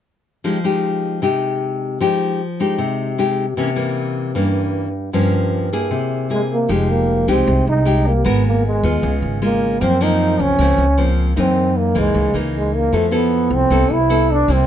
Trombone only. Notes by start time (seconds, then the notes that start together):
6.33 G#3
6.53 A#3
6.73 G#3
6.91 A#3
7.29 C4
7.69 D#4
8.07 A#3
8.27 B3
8.46 A#3
8.66 G#3
9.44 A#3
9.83 C4
10.03 D#4
10.41 C#4
11.39 C4
11.78 A#3
11.98 G#3
12.57 G#3
12.76 A#3
12.95 A3
13.14 B3
13.54 C4
13.92 E4
14.32 D4
14.53 C4